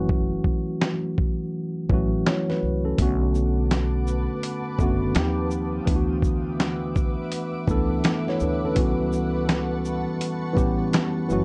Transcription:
Already playing: upright bass F#1, tine electric piano E3 F#3 A3 C#4 F#4
0.09 kick
0.44 kick
0.82 snare, clap
1.18 kick
1.89 upright bass A1, tine electric piano E3 F#3 A3 C#4, kick
1.94 tine electric piano F#4
2.27 tine electric piano E4 C#5, snare, clap
2.50 tine electric piano B4, snare
2.63 upright bass C2
2.85 tine electric piano C#4 A4
2.98 upright bass B1, tine electric piano D3 A3 B3 C#4 F#4, ambient pad B4 F#5 A5 D6, kick, closed hi-hat
3.35 shaker
3.71 snare, clap, closed hi-hat
4.07 shaker
4.43 closed hi-hat
4.79 upright bass F#1, tine electric piano D3 A3 B3 C#4 F#4, kick, shaker
5.15 upright bass D#2, tine electric piano F3 A#3 C4 D#4, snare, clap, closed hi-hat
5.19 tine electric piano G4
5.51 shaker
5.86 upright bass D2, tine electric piano E3 A3 B3 D4 E4, ambient pad B4 E5 F#5 D6, kick, closed hi-hat
5.96 tine electric piano F#4
6.22 kick, shaker
6.60 snare, clap, closed hi-hat
6.96 kick, shaker
7.32 closed hi-hat
7.67 upright bass C#2, tine electric piano E3 A3 B3 D4 A4, kick, shaker
8.04 snare, clap, closed hi-hat
8.28 tine electric piano E4 C#5, snare
8.40 upright bass D2, tine electric piano D4 B4, shaker
8.65 tine electric piano C#4 A4
8.75 upright bass C#2, tine electric piano E3 G3 B3 C#4 F#4, ambient pad A5 C#6, kick, closed hi-hat
9.13 shaker
9.49 snare, clap, closed hi-hat
9.85 shaker
10.21 closed hi-hat
10.53 upright bass A1, tine electric piano E3 G3 B3 C#4 G4, kick
10.58 shaker
10.93 snare, clap, closed hi-hat
11.29 upright bass F#1, tine electric piano E3 F#3 A3 C#4 F#4, ambient pad A4 E5, shaker

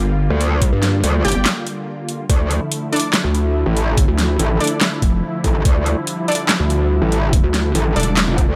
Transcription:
Already playing: wobble bass G1, supersaw synth D3 G3 A#3 F4
0.30 wobble bass D2
0.41 closed hi-hat
0.62 kick, closed hi-hat
0.72 wobble bass G2
0.83 snare, closed hi-hat
1.04 wobble bass D2, closed hi-hat
1.25 wobble bass G1, synth stab G4 D5 G5, closed hi-hat
1.28 closed hi-hat
1.32 wobble bass G1, closed hi-hat
1.46 snare, clap, closed hi-hat
1.67 closed hi-hat
2.09 closed hi-hat
2.29 wobble bass D2, supersaw synth D3 F3 A3 E4, kick, closed hi-hat
2.51 closed hi-hat
2.72 closed hi-hat
2.92 synth stab D4 A4 D5, closed hi-hat
2.96 closed hi-hat
3.00 closed hi-hat
3.14 snare, clap, closed hi-hat
3.24 wobble bass D2
3.35 closed hi-hat
3.66 wobble bass A1
3.77 closed hi-hat
3.97 kick, closed hi-hat
4.08 wobble bass D2
4.19 snare, closed hi-hat
4.39 wobble bass A1, closed hi-hat
4.60 synth stab D4 A4 D5, closed hi-hat
4.64 closed hi-hat
4.67 closed hi-hat
4.81 snare, clap, closed hi-hat
5.02 wobble bass F1, kick, closed hi-hat
5.44 wobble bass A1, kick, closed hi-hat
5.65 wobble bass D2, supersaw synth G3, kick, closed hi-hat
5.86 closed hi-hat
6.07 closed hi-hat
6.28 synth stab D4 A4 D5, closed hi-hat
6.32 closed hi-hat
6.35 closed hi-hat
6.49 snare, clap, closed hi-hat
6.60 wobble bass D2
6.70 closed hi-hat
7.02 wobble bass A1
7.12 closed hi-hat
7.33 kick, closed hi-hat
7.44 wobble bass D2
7.54 snare, closed hi-hat
7.75 wobble bass A1, closed hi-hat
7.96 wobble bass E1, synth stab D4 A4 D5, closed hi-hat
8.00 closed hi-hat
8.03 closed hi-hat
8.17 snare, clap, closed hi-hat
8.28 wobble bass F1
8.38 kick, closed hi-hat
8.49 wobble bass D2

